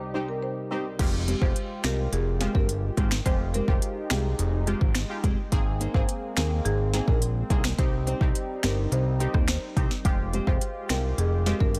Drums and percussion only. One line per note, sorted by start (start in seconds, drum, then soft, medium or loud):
0.99 kick loud
0.99 closed hi-hat medium
0.99 crash loud
1.28 closed hi-hat medium
1.42 kick medium
1.56 closed hi-hat medium
1.84 finger snap loud
1.84 snare loud
1.84 closed hi-hat medium
2.13 closed hi-hat medium
2.41 snare medium
2.41 closed hi-hat medium
2.55 kick loud
2.69 closed hi-hat medium
2.97 kick loud
2.97 closed hi-hat medium
3.11 finger snap medium
3.11 snare loud
3.26 kick loud
3.26 closed hi-hat medium
3.54 closed hi-hat medium
3.68 kick loud
3.82 closed hi-hat medium
4.10 finger snap loud
4.10 snare loud
4.10 closed hi-hat medium
4.39 closed hi-hat medium
4.67 closed hi-hat medium
4.81 kick loud
4.95 finger snap loud
4.95 snare loud
4.95 closed hi-hat medium
5.24 kick loud
5.24 closed hi-hat medium
5.52 kick loud
5.52 closed hi-hat medium
5.81 closed hi-hat medium
5.94 kick medium
6.09 closed hi-hat medium
6.37 finger snap loud
6.37 snare loud
6.37 closed hi-hat medium
6.66 closed hi-hat medium
6.94 snare medium
6.94 closed hi-hat medium
7.08 kick loud
7.22 closed hi-hat medium
7.50 kick loud
7.50 closed hi-hat medium
7.64 finger snap medium
7.64 snare loud
7.79 kick loud
7.79 closed hi-hat medium
8.07 closed hi-hat medium
8.21 kick medium
8.35 closed hi-hat medium
8.63 finger snap loud
8.63 snare loud
8.63 closed hi-hat medium
8.92 closed hi-hat medium
9.20 closed hi-hat medium
9.34 kick loud
9.34 cross-stick medium
9.48 finger snap loud
9.48 snare loud
9.48 closed hi-hat medium
9.77 kick loud
9.77 closed hi-hat medium
9.91 snare medium
10.05 kick loud
10.05 closed hi-hat medium
10.33 closed hi-hat medium
10.47 kick medium
10.61 closed hi-hat medium
10.89 finger snap loud
10.89 snare loud
10.89 closed hi-hat medium
11.18 closed hi-hat medium
11.46 snare medium
11.46 closed hi-hat medium
11.60 kick loud
11.75 closed hi-hat medium